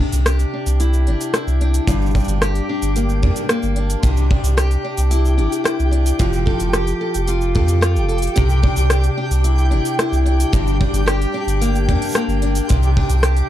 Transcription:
Already playing: C3 G4 G5
0.00 D4
0.12 C2, open hi-hat, cabasa
0.26 G4, cross-stick, open hi-hat, cabasa
0.39 open hi-hat, cabasa
0.54 D4
0.66 C2, open hi-hat, cabasa
0.80 E4, open hi-hat, cabasa
0.93 cabasa
1.07 G1 D4, open hi-hat
1.21 open hi-hat, cabasa
1.34 E4, cross-stick, open hi-hat, cabasa
1.47 C2, cabasa
1.61 D4, open hi-hat
1.74 open hi-hat, cabasa
1.87 G1 G2, kick, open hi-hat, cabasa
2.02 cabasa
2.06 cabasa
2.11 cabasa
2.15 D4, kick, cabasa
2.20 cabasa
2.24 G1, cabasa
2.28 open hi-hat, cabasa
2.42 G4, cross-stick, open hi-hat, cabasa
2.55 open hi-hat, cabasa
2.69 D4
2.82 G1, open hi-hat, cabasa
2.96 A#3, open hi-hat, cabasa
3.09 cabasa
3.23 G2 D4, kick, open hi-hat
3.36 open hi-hat, cabasa
3.49 A#3, cross-stick, open hi-hat, cabasa
3.63 G1, cabasa
3.76 D4, open hi-hat
3.90 open hi-hat, cabasa
4.03 C2 C3, kick, open hi-hat, cabasa
4.17 cabasa
4.30 D4, kick
4.44 C2, open hi-hat, cabasa
4.57 G4, cross-stick, open hi-hat, cabasa
4.71 open hi-hat, cabasa
4.84 D4
4.97 C2, open hi-hat, cabasa
5.11 E4, open hi-hat, cabasa
5.25 cabasa
5.38 G1 D4, open hi-hat
5.52 open hi-hat, cabasa
5.64 E4, cross-stick, open hi-hat, cabasa
5.79 C2, cabasa
5.91 D4, open hi-hat
6.06 open hi-hat, cabasa
6.19 F1 F3, kick, open hi-hat, cabasa
6.33 cabasa
6.46 A4, kick
6.60 F1, open hi-hat, cabasa
6.73 G4, cross-stick, open hi-hat, cabasa
6.87 open hi-hat, cabasa
7.01 A4
7.14 F1, open hi-hat, cabasa
7.28 F4, open hi-hat, cabasa
7.41 cabasa
7.55 F2 A4, kick, open hi-hat
7.68 open hi-hat, cabasa
7.81 F4, cross-stick, open hi-hat, cabasa
7.96 F1, cabasa
8.08 A4, open hi-hat
8.18 open hi-hat
8.22 open hi-hat, cabasa
8.27 open hi-hat
8.36 C2 C3, kick, open hi-hat, cabasa
8.49 cabasa
8.63 D4, kick
8.76 C2, open hi-hat, cabasa
8.90 G4, cross-stick, open hi-hat, cabasa
9.04 open hi-hat, cabasa
9.17 D4
9.31 C2, open hi-hat, cabasa
9.44 E4, open hi-hat, cabasa
9.58 cabasa
9.71 G1 D4, open hi-hat
9.85 open hi-hat, cabasa
9.99 E4, cross-stick, open hi-hat, cabasa
10.12 C2, cabasa
10.26 D4, open hi-hat
10.40 open hi-hat, cabasa
10.53 G1 G2, kick, open hi-hat, cabasa
10.67 cabasa
10.80 D4, kick
10.93 G1, open hi-hat, cabasa
11.06 G4, cross-stick, open hi-hat, cabasa
11.22 open hi-hat, cabasa
11.34 D4
11.47 G1, open hi-hat, cabasa
11.61 A#3, open hi-hat, cabasa
11.75 cabasa
11.89 G2 D4, kick, open hi-hat
12.02 open hi-hat, cabasa
12.04 cabasa
12.07 cabasa
12.09 cabasa
12.11 cabasa
12.13 cross-stick, open hi-hat, cabasa
12.15 A#3, cabasa
12.28 G1, cabasa
12.42 D4, open hi-hat
12.55 open hi-hat, cabasa
12.69 C2 C3, kick, open hi-hat, cabasa
12.83 cabasa
12.97 D4, kick
13.09 C2, open hi-hat, cabasa
13.23 G4, cross-stick, open hi-hat, cabasa
13.37 open hi-hat, cabasa

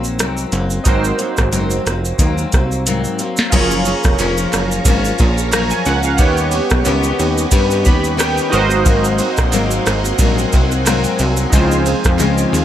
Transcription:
Already playing: A#1 F#3 A#3 C4 D#4 F#4 A#4 C5
0.04 shaker
0.19 C2 G#2 F#3 A#3 C4, cross-stick, closed hi-hat, shaker
0.37 shaker
0.52 F#1 F#3 A#3 C4, closed hi-hat, shaker
0.70 shaker
0.84 G#1 G#2 F#3 A#3 C4 D#4 F#4 A#4, kick, closed hi-hat, shaker
0.89 C5
1.04 shaker
1.18 F#3 A#3 C4, closed hi-hat, shaker
1.37 G#1, kick, cross-stick, shaker
1.51 F#1 G#2 F#3 A#3 C4, closed hi-hat, shaker
1.70 shaker
1.85 F1 F#3 A#3 C4, cross-stick, closed hi-hat, shaker
2.05 shaker
2.19 D#2 G#2 F#3 A#3 C4, kick, closed hi-hat, shaker
2.38 shaker
2.52 C2 F#3 A#3 C4, kick, cross-stick, closed hi-hat, shaker
2.72 shaker
2.86 G#2 F#3 A#3 C4, closed hi-hat, shaker
3.04 shaker
3.19 F#3 A#3 C4, closed hi-hat, shaker
3.37 snare, shaker
3.50 F#1 F#2 F3 A#3 C#4 F4 G#4 A#4 F5 A#5 C#6, kick, crash, ride, shaker
3.55 C#5
3.71 shaker
3.85 F3 A#3 C#4, ride, shaker
4.04 F1, kick, cross-stick, shaker
4.19 F1 F3 A#3 C#4, clap, ride, shaker
4.37 shaker
4.52 F#1 F3 A#3 C#4, cross-stick, clap, ride, shaker
4.71 shaker
4.85 G#1 F#2 F3 A#3 C#4, kick, ride, shaker
5.05 shaker
5.18 A#1 F3 A#3 C#4, kick, ride, shaker
5.38 shaker
5.52 F#2 F3 A#3 C#4 A#5, cross-stick, clap, ride, shaker
5.70 G#5, shaker
5.86 C#2 F3 A#3 C#4 F#5, ride, shaker
6.03 F5, shaker
6.17 D#2 D#3 B3 C#4 G4 B4 D#5 F#5, kick, ride, shaker
6.22 C#5
6.37 shaker
6.51 B3 C#4 G4, ride, shaker
6.70 B1, kick, cross-stick, shaker
6.84 C#2 D#3 B3 C#4 G4, clap, ride, shaker
7.03 shaker
7.18 D#2 B3 C#4 G4, ride, shaker
7.38 shaker
7.51 G2 D#3 B3 C#4 G4, kick, ride, shaker
7.71 shaker
7.85 D#2 B3 C#4 G4 B5, kick, ride, shaker
8.04 shaker
8.17 D#3 B3 C#4 G4 G5, cross-stick, clap, ride, shaker
8.37 shaker
8.50 G#1 F#3 A#3 C4 D#4 F#4 A#4 D#5 F#5 G#5 C6, ride, shaker
8.55 C5
8.70 shaker
8.85 G#2 F#3 A#3 C4, kick, ride, shaker
9.04 shaker
9.18 F#3 A#3 C4, ride, shaker
9.37 A#1, kick, cross-stick, shaker
9.53 G#1 G#2 F#3 A#3 C4, clap, ride, shaker
9.71 shaker
9.86 G#1 F#3 A#3 C4, cross-stick, clap, ride, shaker
10.05 shaker
10.19 A#1 G#2 F#3 A#3 C4, kick, ride, shaker
10.38 shaker
10.53 C2 F#3 A#3 C4, kick, ride, shaker
10.72 shaker
10.86 G#2 F#3 A#3 C4, cross-stick, clap, ride, shaker
11.04 shaker
11.19 C2 F#3 A#3 C4, ride, shaker
11.37 shaker
11.50 C#2 C#3 F3 G#3 C4 D#4 E4 G#4 F5, kick, ride, shaker
11.55 F4 C5
11.71 shaker
11.86 F3 G#3 C4, ride, shaker
12.04 F2, kick, cross-stick, shaker
12.19 C#2 C#3 F3 G#3 C4, clap, ride, shaker
12.38 shaker
12.52 D#2 F3 G#3 C4, ride, shaker

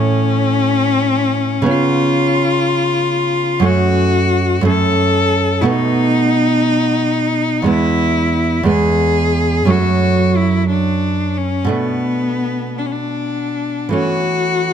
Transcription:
Already playing: A2 A3 C#4
1.62 C#3 B3
1.66 C#4 F4
3.60 F#2 A3
3.64 C#4 F#4
4.61 F#2 A3 C#4
4.67 A4
5.61 B2 A3 B3 E4
5.66 D#4
7.62 E2 G#3 B3
7.68 E4
8.63 E2 G#3 B3
8.68 G#4
9.65 F#2 F#3 A3
9.70 F#4
10.37 E4
10.70 D4
11.37 C#4
11.65 B2 A3 D4
11.71 B3
12.78 D4
12.86 C#4
12.92 D4
13.89 E3 A3 C#4
13.94 F#4

